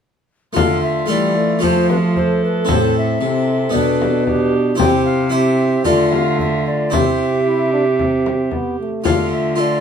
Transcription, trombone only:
0.57 1.12 A3 medium
1.10 1.39 G3 medium
1.37 1.63 A3 medium
1.64 2.72 A3 medium
2.71 3.21 C4 medium
3.22 3.73 C4 medium
3.75 4.26 D4 medium
4.27 4.79 D4 medium
4.80 5.29 C4 medium
5.34 5.87 C4 medium
5.86 6.92 A3 medium
6.92 7.39 C4 medium
7.46 7.71 E4 medium
7.73 7.85 D4 medium
8.00 8.51 C4 medium
8.52 8.78 B3 medium
8.80 9.05 A3 medium
9.06 9.56 A3 medium
9.60 9.80 A3 medium

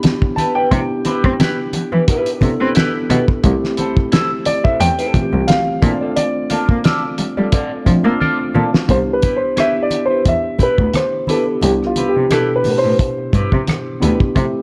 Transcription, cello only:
0.72 0.80 C3 loud
1.05 1.11 C4 soft
1.24 1.32 C4 loud
1.74 1.80 E3 soft
1.92 2.00 E3 medium
2.42 2.50 C3 medium
2.61 2.69 C4 loud
3.10 3.18 B2 loud
3.44 3.52 C2 loud
4.80 4.88 E2 medium
5.33 5.41 C2 medium
5.82 5.90 A#2 loud
6.51 6.57 A#3 soft
6.69 6.77 A#3 medium
7.18 7.24 G3 soft
7.38 7.46 G3 medium
7.87 7.95 F3 medium
8.04 8.12 A#3 medium
8.55 8.63 A#2 medium
8.89 8.97 C2 medium
10.26 10.34 E2 medium
10.78 10.86 D2 medium
11.63 11.71 C2 loud
11.98 12.04 C3 soft
12.15 12.23 C3 medium
12.66 12.72 A2 soft
12.84 12.92 A2 medium
13.33 13.41 G2 medium
13.52 13.60 C3 medium
14.03 14.11 D2 medium
14.36 14.44 C3 loud

